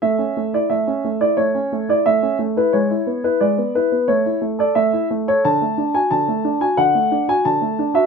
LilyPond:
<<
  \new Staff \with { instrumentName = "Grand piano" } { \time 4/4 \key a \major \tempo 4 = 89 e''8. d''16 e''8. d''16 cis''8. d''16 e''8. b'16 | cis''8. b'16 d''8 b'8 cis''8. d''16 e''8. cis''16 | a''8. gis''16 a''8. gis''16 fis''8. gis''16 a''8. e''16 | }
  \new Staff \with { instrumentName = "Grand piano" } { \time 4/4 \key a \major a16 cis'16 a16 e'16 a16 cis'16 a16 e'16 a16 cis'16 a16 e'16 a16 cis'16 a16 e'16 | gis16 e'16 b16 e'16 gis16 b16 e'16 b16 a16 e'16 a16 a'16 a16 e'16 a16 a'16 | d16 a16 d'16 fis'16 d16 a16 d'16 fis'16 d16 a16 d'16 fis'16 d16 a16 d'16 fis'16 | }
>>